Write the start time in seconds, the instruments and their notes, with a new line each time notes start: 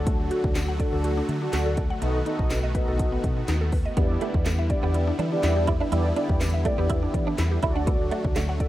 Already playing: fingered electric bass D2, supersaw synth D3 F#3 A3 F#4, analog polysynth D4 F#4 A4
0.07 synth pluck A3, kick, closed hi-hat
0.31 synth pluck F#4, closed hi-hat
0.44 fingered electric bass D2, kick
0.55 snare, clap, closed hi-hat, tambourine
0.68 synth pluck F#5
0.80 analog polysynth D4 F#4 A4, synth pluck D5, kick, closed hi-hat
0.93 fingered electric bass D2, synth pluck A4
1.04 synth pluck F#4, closed hi-hat
1.17 synth pluck D4
1.29 fingered electric bass D3, synth pluck A3, closed hi-hat
1.41 analog polysynth D4 F#4 A4, synth pluck D4
1.53 fingered electric bass D2, synth pluck F#4, snare, clap, closed hi-hat, tambourine
1.66 synth pluck A4
1.77 synth pluck D5, kick, closed hi-hat
1.90 synth pluck F#5
2.02 fingered electric bass B1, supersaw synth D#3 B3 F#4, synth pluck A3, analog polysynth B3 D#4 F#4 A4 D#5, closed hi-hat
2.26 analog polysynth B3 D#4 F#4 A4 D#5, synth pluck D#4, closed hi-hat
2.39 fingered electric bass B1, kick
2.50 snare, clap, closed hi-hat, tambourine
2.64 synth pluck D#5
2.75 analog polysynth B3 D#4 F#4 A4 D#5, synth pluck B4, kick, closed hi-hat
2.88 fingered electric bass B1, synth pluck A4
2.99 synth pluck D#4, kick, closed hi-hat
3.12 synth pluck B3
3.24 fingered electric bass B2, synth pluck A3, kick, closed hi-hat
3.37 synth pluck B3
3.48 fingered electric bass D#2, synth pluck D#4, snare, clap, closed hi-hat, tambourine
3.61 synth pluck A4
3.72 synth pluck B4, kick, open hi-hat
3.86 synth pluck D#5
3.97 fingered electric bass E2, supersaw synth D3 G3 E4, synth pluck G3, analog polysynth B3 D4 E4 G4 D5, clean electric guitar B3, kick, closed hi-hat
4.21 clean electric guitar A3, synth pluck E4, closed hi-hat
4.34 fingered electric bass E2, muted clean electric guitar stroke, kick
4.45 clean electric guitar A3, snare, clap, closed hi-hat, tambourine
4.59 synth pluck E5, muted clean electric guitar stroke
4.70 analog polysynth B3 D4 E4 G4 D5, synth pluck D5, kick, closed hi-hat
4.83 fingered electric bass E2, clean electric guitar B3, synth pluck G4
4.94 synth pluck E4, closed hi-hat
5.07 synth pluck D4
5.19 fingered electric bass E3, synth pluck G3, clean electric guitar D4, closed hi-hat
5.32 analog polysynth B3 D4 E4 G4 D5, synth pluck D4
5.43 fingered electric bass E2, synth pluck E4, muted clean electric guitar stroke, snare, clap, closed hi-hat, tambourine
5.56 synth pluck G4
5.67 clean electric guitar E4, synth pluck D5, kick, closed hi-hat
5.80 clean electric guitar D4, synth pluck E5
5.92 fingered electric bass E2, synth pluck G3, analog polysynth B3 D4 E4 G4 D5, clean electric guitar E4, closed hi-hat
6.05 muted clean electric guitar stroke
6.16 analog polysynth B3 D4 E4 G4 D5, clean electric guitar D4, synth pluck E4, closed hi-hat
6.29 fingered electric bass E2, kick
6.41 muted clean electric guitar stroke, snare, clap, closed hi-hat, tambourine
6.54 synth pluck E5
6.65 clean electric guitar A3, analog polysynth B3 D4 E4 G4 D5, synth pluck D5, kick, closed hi-hat
6.78 fingered electric bass E2, clean electric guitar B3, synth pluck G4
6.90 clean electric guitar E4, synth pluck E4, kick, closed hi-hat
7.03 synth pluck D4
7.14 fingered electric bass E3, synth pluck G3, muted clean electric guitar stroke, kick, closed hi-hat
7.27 clean electric guitar D4, synth pluck D4
7.38 fingered electric bass E2, synth pluck E4, muted clean electric guitar stroke, snare, clap, closed hi-hat, tambourine
7.51 synth pluck G4
7.62 fingered electric bass D2, supersaw synth F#3 A3 F#4, clean electric guitar E4, analog polysynth F#4 A4 D5, synth pluck D5, kick, closed hi-hat
7.76 clean electric guitar D4, synth pluck F#5
7.87 synth pluck A3, clean electric guitar B3, kick, closed hi-hat
8.11 clean electric guitar A3, synth pluck F#4, closed hi-hat
8.24 fingered electric bass D2, muted clean electric guitar stroke, kick
8.36 clean electric guitar A3, snare, clap, closed hi-hat, tambourine
8.49 synth pluck F#5, muted clean electric guitar stroke
8.60 analog polysynth F#4 A4 E5, synth pluck D5, kick, closed hi-hat